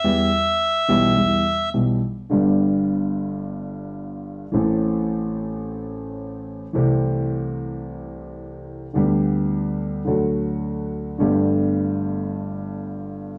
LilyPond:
<<
  \new Staff \with { instrumentName = "Bandoneon" } { \time 4/4 \key e \minor \tempo 4 = 108 e''2. r4 | \key g \major r1 | r1 | r1 |
r1 | r1 | }
  \new Staff \with { instrumentName = "Grand piano" } { \clef bass \time 4/4 \key e \minor <e, e g b g'>8 r4 <b,, b, e g b g'>8 <e, e g b g'>8 r8 <b,, b, e g b g'>8 r8 | \key g \major <g,, g, d g b g'>1 | <a,, a, e a c' a'>1 | <c, c e a c' g'>1 |
<d, d g b g'>2 <d, d fis a fis'>2 | <g,, g, d a b g'>1 | }
>>